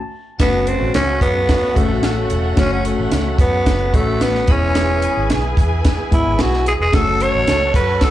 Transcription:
0.00 0.37 A5 medium
0.39 0.74 F#1 loud
0.39 4.17 C#3 medium
0.39 4.17 A3 medium
0.39 1.10 A3 medium
0.39 0.69 B3 loud
0.39 4.44 C#4 medium
0.39 1.11 C#4 medium
0.39 4.17 F#4 medium
0.39 1.11 F#4 medium
0.39 4.44 A4 medium
0.39 4.44 C#5 medium
0.39 4.44 F#5 medium
0.39 2.55 A5 medium
0.39 kick loud
0.39 snare loud
0.39 closed hi-hat loud
0.67 0.94 C4 loud
0.67 closed hi-hat medium
0.81 0.92 A1 medium
0.94 1.18 C#2 medium
0.94 1.20 C#4 loud
0.94 snare loud
0.94 closed hi-hat loud
1.21 1.56 F#2 medium
1.21 1.79 B3 medium
1.21 kick medium
1.21 closed hi-hat medium
1.49 kick medium
1.49 snare loud
1.49 closed hi-hat medium
1.74 1.88 F#1 loud
1.74 2.28 A3 medium
1.74 2.04 A3 medium
1.74 2.28 C#4 medium
1.74 2.28 F#4 medium
1.74 kick loud
1.74 closed hi-hat medium
1.91 2.25 A1 medium
2.03 2.60 A3 medium
2.03 snare medium
2.03 closed hi-hat medium
2.30 2.54 E1 medium
2.30 closed hi-hat medium
2.56 2.92 F#1 medium
2.56 3.27 A3 medium
2.56 3.27 C#4 medium
2.56 2.72 C#4 loud
2.56 3.28 F#4 medium
2.56 4.46 B5 medium
2.56 kick loud
2.56 snare loud
2.56 closed hi-hat medium
2.73 2.85 C#4 medium
2.85 3.36 A3 medium
2.85 closed hi-hat medium
2.99 3.10 A1 medium
3.11 3.35 C#2 medium
3.11 snare loud
3.11 closed hi-hat medium
3.39 3.62 F#2 medium
3.39 3.97 B3 medium
3.39 kick loud
3.39 closed hi-hat medium
3.66 3.89 F#1 loud
3.66 kick medium
3.66 snare loud
3.66 closed hi-hat medium
3.93 4.40 A1 medium
3.93 4.46 A3 medium
3.93 4.24 A3 medium
3.93 4.46 C#4 medium
3.93 4.47 F#4 medium
3.93 kick loud
3.93 closed hi-hat medium
4.21 4.53 B3 medium
4.21 snare medium
4.21 closed hi-hat medium
4.35 snare soft
4.47 5.06 E1 loud
4.47 6.62 E3 medium
4.47 5.35 G#3 medium
4.47 5.35 B3 medium
4.47 6.62 B3 medium
4.47 6.89 E4 medium
4.47 5.35 E4 medium
4.47 6.62 G#4 medium
4.47 6.91 G#4 medium
4.47 6.89 B4 medium
4.47 6.91 B4 medium
4.47 6.91 E5 medium
4.47 6.89 G#5 loud
4.47 6.91 G#5 medium
4.47 kick loud
4.47 closed hi-hat medium
4.51 5.31 C#4 loud
4.75 snare loud
4.75 closed hi-hat medium
5.02 closed hi-hat medium
5.17 5.28 G#1 medium
5.30 5.53 B1 medium
5.30 snare loud
5.30 closed hi-hat medium
5.57 5.92 E2 medium
5.57 kick loud
5.57 closed hi-hat medium
5.85 kick medium
5.85 snare loud
5.85 closed hi-hat medium
6.11 6.24 G#2 loud
6.11 6.64 G#3 medium
6.11 6.64 B3 medium
6.11 6.64 E4 medium
6.11 6.43 E4 medium
6.11 kick loud
6.11 closed hi-hat medium
6.26 6.40 G#1 medium
6.39 6.74 B1 loud
6.39 6.67 F#4 medium
6.39 snare loud
6.39 closed hi-hat medium
6.53 snare soft
6.66 6.73 G#4 loud
6.66 closed hi-hat medium
6.80 6.91 E1 medium
6.80 6.97 G#4 loud
6.92 7.28 F#1 medium
6.92 8.11 F#3 medium
6.92 7.63 A3 medium
6.92 7.63 C#4 medium
6.92 8.11 C#4 medium
6.92 7.63 F#4 medium
6.92 8.11 F#4 medium
6.92 8.11 A4 medium
6.92 7.24 A4 loud
6.92 8.11 C#5 medium
6.92 8.11 F#5 medium
6.92 8.11 A5 medium
6.92 kick loud
6.92 snare loud
6.92 closed hi-hat medium
7.20 7.75 C#5 loud
7.20 closed hi-hat medium
7.35 7.46 A1 medium
7.47 7.71 C#2 medium
7.47 snare loud
7.47 closed hi-hat loud
7.74 7.97 F#2 medium
7.74 8.05 B4 loud
7.74 kick loud
7.74 closed hi-hat medium
8.01 8.11 A4 medium
8.01 kick medium
8.01 snare loud
8.01 closed hi-hat medium

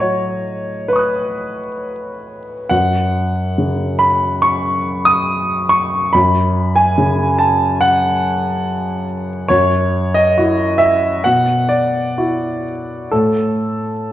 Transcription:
0.00 2.66 A2 soft
0.00 2.70 F#3 soft
0.00 0.89 C#5 medium
0.00 2.74 D#5 medium
0.88 2.70 B4 medium
0.88 2.66 B5 soft
0.93 2.68 C#6 soft
0.93 2.69 D#6 soft
0.99 2.71 F#6 soft
2.69 6.09 F#2 soft
2.69 4.00 F#5 medium
3.58 6.13 C#3 soft
3.99 4.42 B5 medium
4.42 5.06 C#6 medium
5.05 5.70 D#6 medium
5.69 6.13 C#6 medium
6.13 9.45 F#2 soft
6.13 6.76 B5 medium
6.76 7.38 G#5 medium
6.98 9.49 C#3 soft
7.39 7.80 A5 medium
7.81 9.05 F#5 medium
9.48 11.20 F#2 soft
9.48 10.14 C#5 medium
10.14 10.79 D#5 medium
10.38 11.21 E4 soft
10.38 11.21 F#4 soft
10.78 11.23 E5 medium
11.24 13.07 B2 soft
11.24 11.70 F#5 medium
11.69 13.10 D5 medium
12.18 13.07 E4 soft
12.18 13.07 F#4 soft
13.11 14.12 A2 soft
13.11 14.12 A4 medium

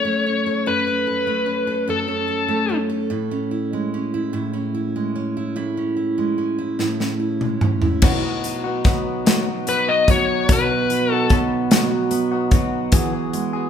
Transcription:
0.00 0.65 F#2 medium
0.00 0.26 C#4 soft
0.00 0.46 A4 medium
0.00 0.70 C#5 medium
0.05 1.27 A3 soft
0.26 0.87 C#4 soft
0.46 0.67 A4 soft
0.66 1.86 F#2 medium
0.66 1.07 A4 medium
0.66 1.90 B4 medium
0.87 1.46 C#4 soft
1.07 1.67 A4 soft
1.27 2.48 A3 soft
1.46 2.07 C#4 soft
1.67 1.88 A4 medium
1.88 3.10 F#2 medium
1.88 2.28 A4 medium
1.88 2.77 A4 medium
2.08 2.69 C#4 soft
2.28 2.89 A4 medium
2.48 3.31 A3 soft
2.69 3.11 C#4 soft
2.90 3.76 A4 medium
3.10 4.32 A2 medium
3.10 3.50 E4 soft
3.31 3.93 C#4 soft
3.51 4.13 E4 soft
3.73 4.95 G#3 soft
3.94 4.52 C#4 soft
4.14 4.32 E4 medium
4.33 5.55 A2 medium
4.33 4.73 E4 soft
4.53 5.14 C#4 soft
4.75 5.36 E4 medium
4.96 6.17 G#3 soft
5.16 5.76 C#4 soft
5.37 5.55 E4 soft
5.56 6.78 A2 medium
5.56 5.95 E4 medium
5.77 6.37 C#4 soft
5.97 6.57 E4 soft
6.18 7.40 G#3 soft
6.38 6.99 C#4 soft
6.58 6.78 E4 soft
6.79 8.02 A2 medium
6.79 7.19 E4 medium
6.79 snare soft
7.00 7.61 C#4 soft
7.00 snare soft
7.20 7.81 E4 soft
7.41 8.11 G#3 soft
7.41 mid tom medium
7.61 8.11 C#4 soft
7.61 mid tom medium
7.82 8.11 E4 soft
7.82 floor tom medium
8.02 8.23 B2 medium
8.02 10.47 B2 medium
8.02 8.23 F#3 medium
8.02 8.24 B3 medium
8.02 8.23 D#4 medium
8.02 8.22 F#4 medium
8.02 kick loud
8.02 crash medium
8.23 8.66 B3 soft
8.23 8.65 D#4 soft
8.23 8.63 F#4 medium
8.44 9.27 F#3 soft
8.44 closed hi-hat soft
8.64 8.84 B3 soft
8.64 8.85 D#4 soft
8.64 8.85 F#4 medium
8.84 9.25 F#3 medium
8.84 9.67 B3 medium
8.84 9.26 B3 medium
8.84 9.26 D#4 medium
8.84 9.27 F#4 medium
8.84 kick medium
8.84 snare soft
8.84 closed hi-hat soft
9.26 9.47 B2 medium
9.26 9.47 F#3 medium
9.26 10.08 F#3 medium
9.26 9.47 B3 medium
9.26 9.47 D#4 medium
9.26 9.46 F#4 loud
9.26 snare loud
9.26 closed hi-hat medium
9.47 9.89 B3 soft
9.47 9.88 D#4 medium
9.47 9.86 F#4 soft
9.67 11.30 B3 medium
9.67 9.89 B4 medium
9.67 closed hi-hat medium
9.87 10.08 B3 soft
9.87 10.09 D#4 soft
9.87 10.08 F#4 soft
9.87 10.09 D#5 medium
10.08 10.48 F#3 medium
10.08 10.89 F#3 medium
10.08 10.49 B3 medium
10.08 10.50 D#4 medium
10.08 10.50 F#4 medium
10.08 10.51 C#5 medium
10.08 kick medium
10.08 closed hi-hat medium
10.49 12.92 B2 medium
10.49 10.69 B2 medium
10.49 10.70 F#3 medium
10.49 10.70 B3 medium
10.49 10.70 D#4 medium
10.49 10.68 F#4 medium
10.49 11.13 B4 medium
10.49 kick loud
10.49 closed hi-hat medium
10.69 11.11 B3 soft
10.69 11.10 D#4 soft
10.69 11.09 F#4 medium
10.90 11.70 F#3 soft
10.90 closed hi-hat soft
11.10 11.30 B3 soft
11.10 11.31 D#4 medium
11.10 11.30 F#4 medium
11.10 11.38 A4 medium
11.30 11.70 F#3 medium
11.30 12.11 B3 medium
11.30 11.70 B3 medium
11.30 11.71 D#4 medium
11.30 11.71 F#4 medium
11.30 kick medium
11.30 closed hi-hat soft
11.71 11.91 B2 medium
11.71 12.51 F#3 medium
11.71 11.91 F#3 medium
11.71 11.91 B3 medium
11.71 11.91 D#4 medium
11.71 11.90 F#4 loud
11.71 snare loud
11.71 closed hi-hat medium
11.91 12.33 B3 soft
11.91 12.32 D#4 medium
11.91 12.30 F#4 medium
12.11 13.70 B3 medium
12.11 closed hi-hat medium
12.32 12.51 B3 soft
12.32 12.52 D#4 medium
12.32 12.52 F#4 medium
12.51 12.92 F#3 medium
12.51 13.33 F#3 medium
12.51 12.92 B3 medium
12.51 12.93 D#4 medium
12.51 12.93 F#4 medium
12.51 kick medium
12.51 closed hi-hat soft
12.92 13.13 E3 medium
12.92 13.70 E3 medium
12.92 13.13 B3 medium
12.92 13.14 F#4 medium
12.92 13.12 G#4 loud
12.92 kick loud
12.92 closed hi-hat medium
13.13 13.55 B3 soft
13.13 13.54 F#4 medium
13.13 13.52 G#4 medium
13.33 13.70 G#3 medium
13.33 closed hi-hat soft
13.53 13.70 B3 soft
13.53 13.70 F#4 medium
13.53 13.70 G#4 medium

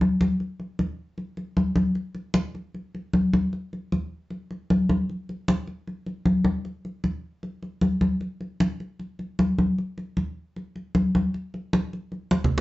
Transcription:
0.01 high conga medium
0.21 high conga medium
0.40 high conga soft
0.60 high conga soft
0.79 high conga medium
1.18 high conga soft
1.37 high conga soft
1.57 high conga medium
1.76 high conga medium
1.95 high conga soft
2.15 high conga soft
2.34 high conga medium
2.55 high conga soft
2.74 high conga soft
2.95 high conga soft
3.13 high conga medium
3.33 high conga medium
3.53 high conga soft
3.73 high conga soft
3.92 high conga medium
4.30 high conga soft
4.51 high conga soft
4.70 high conga medium
4.89 high conga medium
5.10 high conga soft
5.29 high conga soft
5.48 high conga medium
5.67 high conga soft
5.87 high conga soft
6.06 high conga soft
6.26 high conga medium
6.45 high conga medium
6.65 high conga soft
6.85 high conga soft
7.04 high conga medium
7.43 high conga soft
7.63 high conga soft
7.81 high conga medium
8.01 high conga medium
8.21 high conga soft
8.41 high conga soft
8.60 high conga medium
8.80 high conga soft
8.99 high conga soft
9.19 high conga soft
9.39 high conga medium
9.59 high conga medium
9.78 high conga soft
9.98 high conga soft
10.17 high conga medium
10.56 high conga soft
10.76 high conga soft
10.95 high conga medium
11.15 high conga medium
11.34 high conga soft
11.54 high conga soft
11.73 high conga medium
11.93 high conga soft
12.12 high conga soft
12.31 high conga medium
12.44 low conga medium

